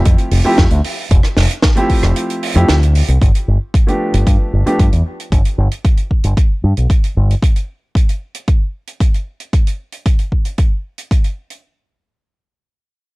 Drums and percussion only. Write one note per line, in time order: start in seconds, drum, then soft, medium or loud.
0.05 kick loud
0.05 closed hi-hat medium
0.18 closed hi-hat medium
0.31 open hi-hat loud
0.58 kick loud
0.58 snare loud
0.58 closed hi-hat medium
0.71 closed hi-hat medium
0.84 open hi-hat medium
1.11 kick loud
1.11 closed hi-hat medium
1.23 cross-stick medium
1.23 closed hi-hat medium
1.37 snare medium
1.37 open hi-hat loud
1.51 closed hi-hat medium
1.62 kick loud
1.62 snare loud
1.62 closed hi-hat medium
1.77 closed hi-hat medium
1.89 kick medium
1.89 open hi-hat medium
2.03 cross-stick medium
2.03 closed hi-hat medium
2.16 closed hi-hat medium
2.30 closed hi-hat medium
2.43 open hi-hat loud
2.56 closed hi-hat medium
2.69 snare loud
2.69 closed hi-hat medium
2.83 closed hi-hat medium
2.95 open hi-hat medium
3.08 closed hi-hat medium
3.22 kick loud
3.22 closed hi-hat medium
3.35 closed hi-hat medium
3.74 kick loud
3.74 closed hi-hat medium
3.88 closed hi-hat medium
4.14 closed hi-hat medium
4.27 kick loud
4.27 closed hi-hat medium
4.66 closed hi-hat medium
4.79 kick loud
4.79 closed hi-hat medium
4.93 closed hi-hat medium
5.20 closed hi-hat medium
5.32 kick loud
5.32 closed hi-hat medium
5.45 closed hi-hat medium
5.71 closed hi-hat medium
5.85 kick loud
5.85 closed hi-hat medium
5.97 closed hi-hat soft
6.11 kick medium
6.24 closed hi-hat medium
6.37 kick loud
6.37 closed hi-hat medium
6.77 closed hi-hat soft
6.90 kick loud
6.90 closed hi-hat medium
7.04 closed hi-hat medium
7.30 closed hi-hat soft
7.42 kick loud
7.42 closed hi-hat medium
7.56 closed hi-hat medium
7.95 kick loud
7.95 closed hi-hat medium
8.09 closed hi-hat medium
8.35 closed hi-hat medium
8.48 kick loud
8.48 closed hi-hat medium
8.87 closed hi-hat medium
9.00 kick loud
9.00 closed hi-hat medium
9.14 closed hi-hat soft
9.40 closed hi-hat soft
9.53 kick loud
9.53 closed hi-hat medium
9.67 closed hi-hat medium
9.92 closed hi-hat soft
10.06 kick loud
10.06 closed hi-hat medium
10.19 closed hi-hat soft
10.32 kick medium
10.45 closed hi-hat medium
10.58 kick loud
10.58 closed hi-hat medium
10.98 closed hi-hat medium
11.11 kick loud
11.11 closed hi-hat medium
11.24 closed hi-hat soft
11.50 closed hi-hat soft